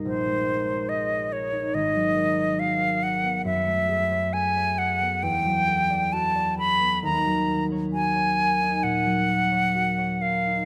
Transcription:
X:1
M:4/4
L:1/16
Q:1/4=67
K:D#m
V:1 name="Flute"
^B4 d2 c2 d4 e2 f2 | =e4 g2 f2 =g4 =a2 b2 | a2 z2 g4 f6 e2 |]
V:2 name="Harp"
[A,,,_E_B=c] G, A ^c G c A D G,,, F, A c F c2 =B, | F,, =A, G c =A c G B, =E,, F, A =d F d A B, | D,, F, A c F c A D A,, F,2 c F c A D |]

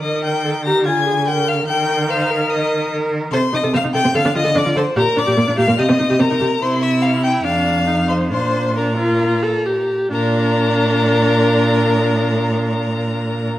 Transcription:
X:1
M:4/4
L:1/16
Q:1/4=145
K:Bb
V:1 name="Violin"
e'2 g'4 b'2 _a'4 g'2 f'2 | g'4 f'4 e'4 z4 | c'2 e'2 f'2 g'2 f'2 e'2 d'2 c'2 | b2 d'4 f'2 e'4 b4 |
c'2 =e'2 f'2 g'2 f'6 c'2 | c'4 b8- b2 z2 | b16- | b16 |]
V:2 name="Violin"
e2 g4 b2 _a4 g2 f2 | g4 f4 e4 z4 | c2 e2 f2 g2 f2 e2 d2 c2 | B2 d4 f2 e4 B4 |
c2 =e2 f2 g2 f6 c2 | c4 B8- B2 z2 | B16- | B16 |]
V:3 name="Viola"
B4 A2 G2 F2 _A2 B4 | B4 c2 B6 B4 | A z E A C E A C A D F A D F A z | G z D G B, D G B, G C E G C E G z |
=E8 D4 _E4 | D4 D2 F4 A2 G4 | D16- | D16 |]
V:4 name="Cello" clef=bass
E,8 D,8 | E,16 | C, z C, C, C, C, C, C, D, D, D, D, D, D, D, z | B,, z B,, B,, B,, B,, B,, B,, C, C, C, C, C, C, C, z |
C,8 F,,8 | B,,12- B,,2 z2 | B,,16- | B,,16 |]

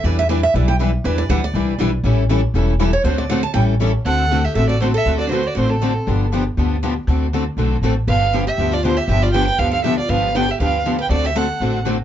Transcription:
X:1
M:4/4
L:1/16
Q:"Swing" 1/4=238
K:Dmix
V:1 name="Violin"
z16 | z16 | z16 | z16 |
f6 e2 e2 d2 c2 e2- | e2 d3/2 B/2 c2 d2 c2 A6- | A2 z12 z2 | z16 |
=f6 e4 d2 c2 e2 | e2 d2 g2 g2 =f2 f2 e2 d2 | =f4 g2 e2 f4 z2 g2 | d2 e2 f6 z6 |]
V:2 name="Steel-string acoustic guitar"
d2 e2 d2 e2 d2 g2 z4 | B2 d2 f2 d6 z4 | z12 z2 ^c2 | c2 d2 f2 a2 g2 z6 |
A6 G2 A2 F2 F2 A2- | A2 F3/2 D/2 F2 F2 F2 C6 | z16 | z16 |
B6 G4 =F2 F2 G2 | G2 =F2 B2 B2 B2 A2 G2 F2 | B4 B2 G2 B4 z2 B2 | F2 G2 A6 z6 |]
V:3 name="Steel-string acoustic guitar"
[E,G,DEB]2 z2 [E,G,DEB]2 z2 [E,G,DEB]2 z2 [E,G,DEB]2 z2 | [E,G,DEB]2 z2 [E,G,DEB]2 z2 [E,G,DEB]2 z2 [E,G,DEB]2 z2 | [E,G,^CEA]2 z2 [E,G,CEA]2 z2 [E,G,CEA]2 z2 [E,G,CEA]2 z2 | [D,A,CFA]2 z2 [D,A,CFA]2 z2 [E,G,^CEA]2 z2 [E,G,CEA]2 z2 |
[D,A,CFA]2 z2 [D,A,CFA]2 z2 [D,A,CFA]2 z2 [D,A,CFA]2 z2 | [D,A,CFA]2 z2 [D,A,CFA]2 z2 [D,A,CFA]2 z2 [D,A,CFA]2 z2 | [D,=F,B,DG]2 z2 [D,F,B,DG]2 z2 [D,F,B,DG]2 z2 [D,F,B,DG]2 z2 | [D,A,CFA]2 z2 [D,A,CFA]2 z2 [D,A,CFA]2 z2 [D,A,CFA]2 z2 |
[D,=F,B,DG]2 z2 [D,F,B,DG]2 z2 [D,F,B,DG]2 z2 [D,F,B,DG]2 z2 | [D,=F,B,DG]2 z2 [D,F,B,DG]2 z2 [D,F,B,DG]2 z2 [D,F,B,DG]2 z2 | [D,=F,B,DG]2 z2 [D,F,B,DG]2 z2 [D,F,B,DG]2 z2 [D,F,B,DG]2 z2 | [D,A,CFA]2 z2 [D,A,CFA]2 z2 [D,A,CFA]2 z2 [D,A,CFA]2 z2 |]
V:4 name="Steel-string acoustic guitar"
[E,G,DEB]2 z2 [E,G,DEB]2 z2 [E,G,DEB]2 z2 [E,G,DEB]2 z2 | [E,G,DEB]2 z2 [E,G,DEB]2 z2 [E,G,DEB]2 z2 [E,G,DEB]2 z2 | [E,G,^CEA]2 z2 [E,G,CEA]2 z2 [E,G,CEA]2 z2 [E,G,CEA]2 z2 | [D,A,CFA]2 z2 [D,A,CFA]2 z2 [E,G,^CEA]2 z2 [E,G,CEA]2 z2 |
[D,A,CFA]2 z2 [D,A,CFA]2 z2 [D,A,CFA]2 z2 [D,A,CFA]2 z2 | [D,A,CFA]2 z2 [D,A,CFA]2 z2 [D,A,CFA]2 z2 [D,A,CFA]2 z2 | [D,=F,B,DG]2 z2 [D,F,B,DG]2 z2 [D,F,B,DG]2 z2 [D,F,B,DG]2 z2 | [D,A,CFA]2 z2 [D,A,CFA]2 z2 [D,A,CFA]2 z2 [D,A,CFA]2 z2 |
[D,=F,B,DG]2 z2 [D,F,B,DG]2 z2 [D,F,B,DG]2 z2 [D,F,B,DG]2 z2 | [D,=F,B,DG]2 z2 [D,F,B,DG]2 z2 [D,F,B,DG]2 z2 [D,F,B,DG]2 z2 | [D,=F,B,DG]2 z2 [D,F,B,DG]2 z2 [D,F,B,DG]2 z2 [D,F,B,DG]2 z2 | [D,A,CFA]2 z2 [D,A,CFA]2 z2 [D,A,CFA]2 z2 [D,A,CFA]2 z2 |]
V:5 name="Upright bass" clef=bass
E,,8 B,,,8 | E,,4 D,,4 C,,4 B,,,4 | A,,,8 E,,,8 | D,,8 A,,,8 |
D,,8 A,,,8 | D,,8 A,,,8 | G,,,8 D,,8 | D,,8 B,,,4 A,,,4 |
G,,,8 D,,8 | G,,,8 D,,8 | G,,,8 D,,8 | D,,8 A,,,8 |]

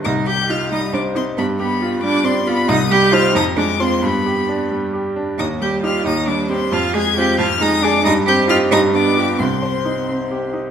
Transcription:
X:1
M:6/8
L:1/8
Q:3/8=90
K:Cm
V:1 name="Violin"
e' g' f' e' d' c' | =b b2 d' c' b | e' g' f' e' d' c' | =b3 z3 |
e' g' f' e' d' c' | f' a' g' f' e' d' | e' g' f' e' d'2 | c'4- c' z |]
V:2 name="Cello"
E G F E D C | =B, B,2 D C B, | E G F E D C | =B,3 z3 |
E G F E D C | F A G F E D | E G F E D2 | C4- C z |]
V:3 name="Grand piano"
C,, G E G, c E | G,, G F G, d F | C,, G, [Ec] F,, A, [Fc] | G,, G D G, G D |
E,, G, [EG] E,, G, [CG] | F,, A, [CF] F,, A, [DA] | G,, C [EG] G,, =B, [FG] | C,, c E C G E |]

